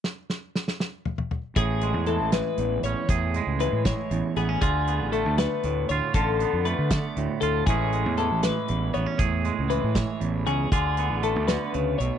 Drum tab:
HH |------------|x-x-x-x-x-x-|x-x-x-x-x-x-|x-x-x-x-x-x-|
SD |o-o-ooo-----|------o-----|------o-----|------o-----|
T2 |--------ooo-|------------|------------|------------|
BD |------------|o-----------|o-----o-----|o-----------|

HH |x-x-x-x-x-x-|x-x-x-x-x-x-|x-x-x-x-x-x-|x-x-x-x-x-x-|
SD |------o-----|------o-----|------o-----|------o-----|
T2 |------------|------------|------------|------------|
BD |o-----o-----|o-----------|o-----o-----|o-----------|